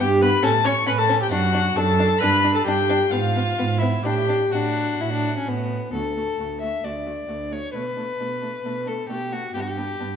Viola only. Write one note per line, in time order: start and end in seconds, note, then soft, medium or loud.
0.00 0.23 G4 loud
0.22 0.42 B4 loud
0.43 0.51 A4 loud
0.64 0.72 C#5 loud
0.88 1.00 B4 loud
0.98 1.22 A4 loud
1.20 1.31 G4 medium
1.32 1.78 F#4 loud
1.76 2.22 A4 loud
2.21 2.54 B4 loud
2.54 2.64 A4 medium
2.65 3.09 G4 medium
3.10 3.80 F4 loud
3.78 4.05 E4 medium
4.03 4.52 G4 medium
4.51 5.70 F#4 medium
5.93 6.01 A3 soft
6.17 6.25 A3 soft
6.39 6.47 A3 soft
6.63 6.71 A3 soft
6.84 6.92 A3 soft
7.06 7.14 A3 soft
7.29 7.37 A3 soft
7.52 7.60 A3 soft
7.74 7.82 A3 soft
7.98 8.06 A3 soft
8.21 8.29 A3 soft
8.43 8.51 A3 soft
8.65 8.73 A3 soft
8.87 8.95 A3 soft
9.10 9.18 A3 medium
9.32 9.40 A3 soft
9.55 9.63 B3 medium
9.77 9.85 B3 soft
10.00 10.08 B3 soft